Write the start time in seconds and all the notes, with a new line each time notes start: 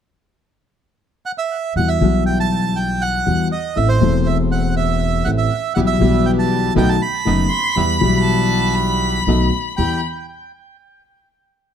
1.26 F#5
1.38 E5
1.76 E2 E3 G3 B3 F#4 F#5
1.88 E5
2.01 B1 B2 E3 G3 B3 F#4
2.26 G5
2.40 A5
2.76 G5
3.01 F#5
3.26 E2 E3 G3 B3 F#4
3.52 D#5
3.76 A1 A2 E3 A3 C4 A4 E5
3.89 C5
3.99 E1 E2 E3 A3 C4
4.03 A4
4.26 E5
4.52 F#5
4.76 E5
5.25 A1 A2 E3 A3 C4 A4 F#5
5.38 E5
5.74 B1 B2 E3 G3 B3 E4 G4 F#5
5.87 E5
5.99 B1 B2 E3 G3 B3 E4 G4
6.26 G5
6.39 A5
6.75 B1 B2 D#3 A3 B3 D#4 F#4 G5
6.89 A5
7.02 B5
7.25 F#1 F#2 D#3 A3 B3 D#4 F#4
7.50 C6
7.75 E2 E3 G3 B3 E4 G4 B5
8.00 B1 B2 E3 G3 B3 E4 G4
8.24 A5
8.75 B5
9.27 B1 B2 D#3 A3 B3 D#4 F#4
9.77 E2 G3 B3 E4 G4 G5 B5